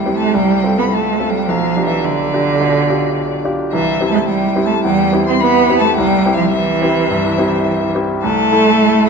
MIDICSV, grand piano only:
0, 0, Header, 1, 2, 480
1, 0, Start_track
1, 0, Key_signature, 0, "major"
1, 0, Tempo, 563910
1, 1262, Time_signature, 4, 2, 24, 8
1, 7740, End_track
2, 0, Start_track
2, 0, Title_t, "Grand piano"
2, 0, Program_c, 0, 0
2, 0, Control_c, 0, 64, 127
2, 0, Note_on_c, 0, 36, 45
2, 0, Note_on_c, 0, 60, 38
2, 0, Note_on_c, 0, 64, 34
2, 0, Note_on_c, 0, 67, 37
2, 50, Note_off_c, 0, 60, 0
2, 50, Note_on_c, 0, 60, 36
2, 54, Note_off_c, 0, 64, 0
2, 54, Note_on_c, 0, 64, 34
2, 58, Note_off_c, 0, 67, 0
2, 58, Note_on_c, 0, 67, 39
2, 270, Note_off_c, 0, 60, 0
2, 271, Note_off_c, 0, 64, 0
2, 274, Note_off_c, 0, 67, 0
2, 294, Note_off_c, 0, 36, 0
2, 294, Note_on_c, 0, 36, 47
2, 308, Control_c, 0, 64, 0
2, 455, Control_c, 0, 64, 127
2, 530, Note_off_c, 0, 36, 0
2, 542, Note_on_c, 0, 60, 37
2, 545, Note_on_c, 0, 65, 35
2, 547, Note_on_c, 0, 69, 38
2, 989, Note_off_c, 0, 60, 0
2, 990, Note_off_c, 0, 65, 0
2, 992, Note_off_c, 0, 69, 0
2, 1022, Note_on_c, 0, 60, 35
2, 1024, Note_on_c, 0, 65, 33
2, 1029, Note_on_c, 0, 69, 37
2, 1239, Note_off_c, 0, 60, 0
2, 1240, Note_off_c, 0, 65, 0
2, 1243, Note_off_c, 0, 69, 0
2, 1268, Note_on_c, 0, 35, 50
2, 1279, Control_c, 0, 64, 0
2, 1408, Control_c, 0, 64, 127
2, 1500, Note_off_c, 0, 35, 0
2, 1503, Note_on_c, 0, 62, 36
2, 1507, Note_on_c, 0, 65, 39
2, 1511, Note_on_c, 0, 67, 37
2, 1949, Note_off_c, 0, 62, 0
2, 1951, Note_off_c, 0, 65, 0
2, 1953, Note_off_c, 0, 67, 0
2, 1987, Note_on_c, 0, 62, 38
2, 1989, Note_on_c, 0, 65, 36
2, 1993, Note_on_c, 0, 67, 41
2, 2200, Note_off_c, 0, 62, 0
2, 2201, Note_off_c, 0, 65, 0
2, 2203, Note_off_c, 0, 67, 0
2, 2220, Note_on_c, 0, 35, 48
2, 2453, Note_off_c, 0, 35, 0
2, 2462, Note_on_c, 0, 62, 38
2, 2465, Note_on_c, 0, 65, 38
2, 2470, Note_on_c, 0, 67, 42
2, 2904, Note_off_c, 0, 62, 0
2, 2905, Note_off_c, 0, 65, 0
2, 2908, Note_off_c, 0, 67, 0
2, 2934, Note_on_c, 0, 62, 38
2, 2938, Note_on_c, 0, 65, 37
2, 2940, Note_on_c, 0, 67, 44
2, 3148, Note_off_c, 0, 62, 0
2, 3150, Note_off_c, 0, 65, 0
2, 3151, Note_off_c, 0, 67, 0
2, 3174, Note_on_c, 0, 36, 51
2, 3188, Control_c, 0, 64, 0
2, 3300, Control_c, 0, 64, 127
2, 3401, Note_off_c, 0, 36, 0
2, 3410, Note_on_c, 0, 60, 42
2, 3413, Note_on_c, 0, 64, 39
2, 3418, Note_on_c, 0, 67, 42
2, 3848, Note_off_c, 0, 60, 0
2, 3849, Note_off_c, 0, 64, 0
2, 3851, Note_off_c, 0, 67, 0
2, 3880, Note_on_c, 0, 60, 43
2, 3884, Note_on_c, 0, 64, 40
2, 3887, Note_on_c, 0, 67, 45
2, 4097, Note_off_c, 0, 60, 0
2, 4099, Note_off_c, 0, 64, 0
2, 4101, Note_off_c, 0, 67, 0
2, 4125, Note_on_c, 0, 40, 56
2, 4137, Control_c, 0, 64, 0
2, 4289, Control_c, 0, 64, 127
2, 4357, Note_off_c, 0, 40, 0
2, 4364, Note_on_c, 0, 60, 43
2, 4367, Note_on_c, 0, 64, 43
2, 4370, Note_on_c, 0, 67, 49
2, 4812, Note_off_c, 0, 60, 0
2, 4813, Note_off_c, 0, 64, 0
2, 4815, Note_off_c, 0, 67, 0
2, 4847, Note_on_c, 0, 60, 40
2, 4853, Note_on_c, 0, 64, 41
2, 4854, Note_on_c, 0, 67, 43
2, 5063, Note_off_c, 0, 60, 0
2, 5066, Note_off_c, 0, 64, 0
2, 5066, Note_off_c, 0, 67, 0
2, 5090, Note_on_c, 0, 36, 58
2, 5102, Control_c, 0, 64, 0
2, 5215, Control_c, 0, 64, 127
2, 5320, Note_off_c, 0, 36, 0
2, 5328, Note_on_c, 0, 60, 42
2, 5332, Note_on_c, 0, 64, 44
2, 5336, Note_on_c, 0, 67, 47
2, 5767, Note_off_c, 0, 60, 0
2, 5769, Note_off_c, 0, 64, 0
2, 5771, Note_off_c, 0, 67, 0
2, 5803, Note_on_c, 0, 60, 46
2, 5808, Note_on_c, 0, 64, 41
2, 5812, Note_on_c, 0, 67, 48
2, 6018, Note_off_c, 0, 60, 0
2, 6021, Note_off_c, 0, 64, 0
2, 6023, Note_off_c, 0, 67, 0
2, 6046, Note_on_c, 0, 43, 55
2, 6278, Note_off_c, 0, 43, 0
2, 6287, Note_on_c, 0, 60, 48
2, 6291, Note_on_c, 0, 64, 49
2, 6294, Note_on_c, 0, 67, 52
2, 6732, Note_off_c, 0, 60, 0
2, 6734, Note_off_c, 0, 64, 0
2, 6735, Note_off_c, 0, 67, 0
2, 6766, Note_on_c, 0, 60, 43
2, 6769, Note_on_c, 0, 64, 45
2, 6774, Note_on_c, 0, 67, 47
2, 6983, Note_off_c, 0, 60, 0
2, 6985, Note_off_c, 0, 64, 0
2, 6987, Note_off_c, 0, 67, 0
2, 7013, Note_on_c, 0, 36, 58
2, 7022, Control_c, 0, 64, 0
2, 7142, Control_c, 0, 64, 127
2, 7245, Note_off_c, 0, 36, 0
2, 7248, Note_on_c, 0, 57, 45
2, 7251, Note_on_c, 0, 64, 46
2, 7256, Note_on_c, 0, 69, 48
2, 7696, Note_off_c, 0, 57, 0
2, 7697, Note_off_c, 0, 64, 0
2, 7700, Note_off_c, 0, 69, 0
2, 7740, End_track
0, 0, End_of_file